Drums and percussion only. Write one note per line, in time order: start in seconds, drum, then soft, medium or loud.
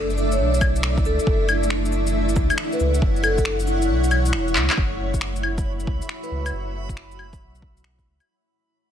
0.10 shaker soft
0.18 cabasa medium
0.32 shaker medium
0.54 shaker soft
0.61 kick loud
0.61 cabasa medium
0.61 claves medium
0.76 shaker medium
0.83 finger snap loud
0.98 kick loud
0.98 shaker soft
1.05 cabasa medium
1.19 shaker medium
1.27 kick loud
1.49 cabasa medium
1.49 claves medium
1.63 shaker medium
1.70 finger snap loud
1.85 shaker soft
1.92 cabasa medium
2.07 shaker medium
2.29 shaker soft
2.36 kick loud
2.36 cabasa medium
2.50 claves medium
2.50 shaker medium
2.58 finger snap loud
2.72 shaker soft
2.80 cabasa medium
2.94 shaker medium
3.02 kick loud
3.16 shaker soft
3.24 cabasa medium
3.24 claves medium
3.38 kick medium
3.38 shaker medium
3.45 finger snap loud
3.59 shaker soft
3.67 cabasa medium
3.82 shaker medium
4.04 shaker soft
4.11 cabasa medium
4.11 claves medium
4.26 shaker medium
4.33 finger snap loud
4.48 shaker soft
4.55 clap medium
4.55 cabasa medium
4.70 clap loud
4.70 claves medium
4.70 shaker medium
4.78 kick loud
5.14 kick medium
5.14 shaker medium
5.21 finger snap loud
5.36 shaker soft
5.43 claves medium
5.58 kick loud
5.58 shaker medium
5.80 shaker soft
5.87 kick loud
6.02 shaker medium
6.09 finger snap medium
6.23 shaker soft
6.46 claves medium
6.46 shaker medium
6.89 kick medium
6.89 shaker medium
6.97 finger snap medium
7.12 shaker soft
7.19 claves soft
7.33 kick loud
7.33 shaker medium
7.55 shaker soft
7.62 kick loud
7.77 shaker medium
7.84 finger snap loud
7.99 kick medium
7.99 shaker soft
8.20 claves medium
8.20 shaker medium